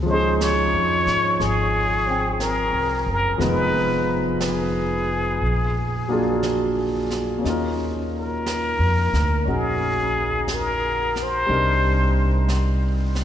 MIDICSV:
0, 0, Header, 1, 5, 480
1, 0, Start_track
1, 0, Tempo, 1006711
1, 1623, Time_signature, 4, 2, 24, 8
1, 6313, End_track
2, 0, Start_track
2, 0, Title_t, "Muted trumpet"
2, 0, Program_c, 0, 59
2, 41, Note_on_c, 0, 72, 78
2, 197, Note_on_c, 0, 73, 85
2, 204, Note_off_c, 0, 72, 0
2, 676, Note_on_c, 0, 68, 77
2, 683, Note_off_c, 0, 73, 0
2, 1148, Note_on_c, 0, 70, 79
2, 1155, Note_off_c, 0, 68, 0
2, 1477, Note_off_c, 0, 70, 0
2, 1488, Note_on_c, 0, 70, 74
2, 1609, Note_off_c, 0, 70, 0
2, 1609, Note_on_c, 0, 70, 54
2, 1631, Note_on_c, 0, 71, 85
2, 1638, Note_off_c, 0, 70, 0
2, 2027, Note_off_c, 0, 71, 0
2, 2113, Note_on_c, 0, 68, 67
2, 3053, Note_off_c, 0, 68, 0
2, 3894, Note_on_c, 0, 70, 74
2, 4532, Note_on_c, 0, 68, 73
2, 4539, Note_off_c, 0, 70, 0
2, 5024, Note_on_c, 0, 70, 80
2, 5031, Note_off_c, 0, 68, 0
2, 5354, Note_on_c, 0, 72, 88
2, 5361, Note_off_c, 0, 70, 0
2, 5968, Note_off_c, 0, 72, 0
2, 6313, End_track
3, 0, Start_track
3, 0, Title_t, "Grand piano"
3, 0, Program_c, 1, 0
3, 0, Control_c, 1, 64, 127
3, 13, Note_on_c, 1, 53, 47
3, 28, Note_on_c, 1, 56, 42
3, 38, Note_on_c, 1, 61, 44
3, 52, Note_on_c, 1, 63, 47
3, 65, Note_on_c, 1, 68, 55
3, 989, Note_on_c, 1, 60, 38
3, 1002, Note_on_c, 1, 79, 42
3, 1604, Note_off_c, 1, 53, 0
3, 1610, Note_off_c, 1, 56, 0
3, 1611, Note_on_c, 1, 53, 47
3, 1618, Note_on_c, 1, 56, 39
3, 1620, Note_off_c, 1, 60, 0
3, 1621, Note_off_c, 1, 61, 0
3, 1623, Note_off_c, 1, 63, 0
3, 1623, Note_on_c, 1, 59, 40
3, 1626, Note_off_c, 1, 79, 0
3, 1629, Note_off_c, 1, 68, 0
3, 1629, Control_c, 1, 64, 0
3, 1630, Note_on_c, 1, 63, 39
3, 1636, Note_on_c, 1, 68, 47
3, 1717, Control_c, 1, 64, 127
3, 2576, Note_off_c, 1, 53, 0
3, 2579, Note_off_c, 1, 56, 0
3, 2582, Note_off_c, 1, 59, 0
3, 2585, Note_off_c, 1, 63, 0
3, 2588, Note_off_c, 1, 68, 0
3, 2588, Control_c, 1, 64, 0
3, 2678, Control_c, 1, 64, 127
3, 2900, Note_on_c, 1, 54, 45
3, 2904, Note_on_c, 1, 58, 47
3, 2910, Note_on_c, 1, 62, 41
3, 2917, Note_on_c, 1, 65, 43
3, 2924, Note_on_c, 1, 68, 55
3, 3513, Note_off_c, 1, 58, 0
3, 3520, Note_on_c, 1, 58, 41
3, 3534, Note_on_c, 1, 61, 38
3, 3543, Note_off_c, 1, 54, 0
3, 3548, Note_off_c, 1, 62, 0
3, 3548, Note_on_c, 1, 63, 38
3, 3552, Note_off_c, 1, 65, 0
3, 3555, Note_off_c, 1, 68, 0
3, 3557, Control_c, 1, 64, 0
3, 3562, Note_on_c, 1, 65, 40
3, 3575, Note_on_c, 1, 70, 45
3, 3630, Control_c, 1, 64, 127
3, 4499, Note_off_c, 1, 61, 0
3, 4506, Note_on_c, 1, 61, 35
3, 4508, Note_off_c, 1, 63, 0
3, 4515, Note_on_c, 1, 63, 33
3, 4521, Note_on_c, 1, 66, 40
3, 5461, Note_off_c, 1, 58, 0
3, 5465, Note_on_c, 1, 55, 43
3, 5472, Note_on_c, 1, 60, 37
3, 5473, Note_off_c, 1, 61, 0
3, 5475, Note_off_c, 1, 63, 0
3, 5476, Note_on_c, 1, 62, 39
3, 5480, Note_off_c, 1, 66, 0
3, 5482, Note_off_c, 1, 65, 0
3, 5482, Note_off_c, 1, 70, 0
3, 5483, Control_c, 1, 64, 0
3, 5483, Note_on_c, 1, 63, 42
3, 5489, Note_on_c, 1, 70, 49
3, 5571, Control_c, 1, 64, 127
3, 6313, Note_off_c, 1, 55, 0
3, 6313, Note_off_c, 1, 60, 0
3, 6313, Note_off_c, 1, 62, 0
3, 6313, Note_off_c, 1, 63, 0
3, 6313, Note_off_c, 1, 70, 0
3, 6313, End_track
4, 0, Start_track
4, 0, Title_t, "Upright bass"
4, 0, Program_c, 2, 32
4, 0, Note_on_c, 2, 37, 71
4, 333, Note_off_c, 2, 37, 0
4, 350, Note_on_c, 2, 41, 55
4, 497, Note_off_c, 2, 41, 0
4, 508, Note_on_c, 2, 44, 55
4, 656, Note_off_c, 2, 44, 0
4, 666, Note_on_c, 2, 32, 69
4, 1284, Note_off_c, 2, 32, 0
4, 1301, Note_on_c, 2, 36, 53
4, 1451, Note_off_c, 2, 36, 0
4, 1461, Note_on_c, 2, 30, 61
4, 1611, Note_off_c, 2, 30, 0
4, 1618, Note_on_c, 2, 29, 70
4, 2561, Note_off_c, 2, 29, 0
4, 2582, Note_on_c, 2, 34, 61
4, 3532, Note_off_c, 2, 34, 0
4, 3551, Note_on_c, 2, 39, 63
4, 4173, Note_off_c, 2, 39, 0
4, 4192, Note_on_c, 2, 41, 52
4, 4341, Note_off_c, 2, 41, 0
4, 4355, Note_on_c, 2, 38, 59
4, 4504, Note_off_c, 2, 38, 0
4, 4519, Note_on_c, 2, 34, 66
4, 5460, Note_off_c, 2, 34, 0
4, 5479, Note_on_c, 2, 36, 78
4, 6313, Note_off_c, 2, 36, 0
4, 6313, End_track
5, 0, Start_track
5, 0, Title_t, "Drums"
5, 195, Note_on_c, 9, 25, 36
5, 195, Note_on_c, 9, 38, 39
5, 195, Note_on_c, 9, 44, 56
5, 242, Note_off_c, 9, 38, 0
5, 242, Note_off_c, 9, 44, 0
5, 511, Note_on_c, 9, 38, 21
5, 558, Note_off_c, 9, 38, 0
5, 669, Note_off_c, 9, 25, 0
5, 669, Note_on_c, 9, 25, 30
5, 669, Note_on_c, 9, 38, 25
5, 717, Note_off_c, 9, 38, 0
5, 1145, Note_off_c, 9, 25, 0
5, 1145, Note_on_c, 9, 25, 25
5, 1145, Note_on_c, 9, 38, 33
5, 1145, Note_on_c, 9, 44, 47
5, 1192, Note_off_c, 9, 38, 0
5, 1192, Note_off_c, 9, 44, 0
5, 1623, Note_off_c, 9, 25, 0
5, 1623, Note_on_c, 9, 25, 34
5, 1623, Note_on_c, 9, 38, 24
5, 1671, Note_off_c, 9, 38, 0
5, 2100, Note_off_c, 9, 25, 0
5, 2100, Note_on_c, 9, 25, 36
5, 2100, Note_on_c, 9, 38, 41
5, 2100, Note_on_c, 9, 44, 46
5, 2148, Note_off_c, 9, 38, 0
5, 2148, Note_off_c, 9, 44, 0
5, 2578, Note_off_c, 9, 25, 0
5, 2578, Note_on_c, 9, 25, 33
5, 3065, Note_off_c, 9, 25, 0
5, 3065, Note_on_c, 9, 25, 26
5, 3065, Note_on_c, 9, 38, 37
5, 3065, Note_on_c, 9, 44, 37
5, 3113, Note_off_c, 9, 38, 0
5, 3113, Note_off_c, 9, 44, 0
5, 3387, Note_on_c, 9, 38, 22
5, 3435, Note_off_c, 9, 38, 0
5, 3554, Note_off_c, 9, 25, 0
5, 3554, Note_on_c, 9, 25, 33
5, 3554, Note_on_c, 9, 38, 25
5, 3601, Note_off_c, 9, 38, 0
5, 4035, Note_off_c, 9, 25, 0
5, 4035, Note_on_c, 9, 25, 35
5, 4035, Note_on_c, 9, 38, 41
5, 4035, Note_on_c, 9, 44, 48
5, 4083, Note_off_c, 9, 38, 0
5, 4083, Note_off_c, 9, 44, 0
5, 4356, Note_on_c, 9, 38, 22
5, 4404, Note_off_c, 9, 38, 0
5, 4516, Note_off_c, 9, 25, 0
5, 4516, Note_on_c, 9, 25, 32
5, 4997, Note_off_c, 9, 25, 0
5, 4997, Note_on_c, 9, 25, 28
5, 4997, Note_on_c, 9, 38, 31
5, 4997, Note_on_c, 9, 44, 45
5, 5044, Note_off_c, 9, 38, 0
5, 5044, Note_off_c, 9, 44, 0
5, 5320, Note_on_c, 9, 38, 23
5, 5368, Note_off_c, 9, 38, 0
5, 5478, Note_off_c, 9, 25, 0
5, 5478, Note_on_c, 9, 25, 35
5, 5953, Note_off_c, 9, 25, 0
5, 5953, Note_on_c, 9, 25, 37
5, 5953, Note_on_c, 9, 38, 36
5, 5953, Note_on_c, 9, 44, 45
5, 6001, Note_off_c, 9, 38, 0
5, 6001, Note_off_c, 9, 44, 0
5, 6270, Note_on_c, 9, 38, 22
5, 6313, Note_off_c, 9, 25, 0
5, 6313, Note_off_c, 9, 38, 0
5, 6313, End_track
0, 0, End_of_file